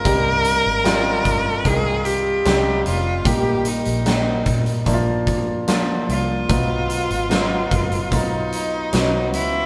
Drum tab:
HH |x-x-x-x-x-x-x-x-|x-xxx-xxx-x-x-x-|x-xxx-xxx-x-x-x-|
SD |----o-------o---|----o-------o---|----o-------o---|
BD |o-----o-o-------|o-----o-o-o-----|o-----o-o-------|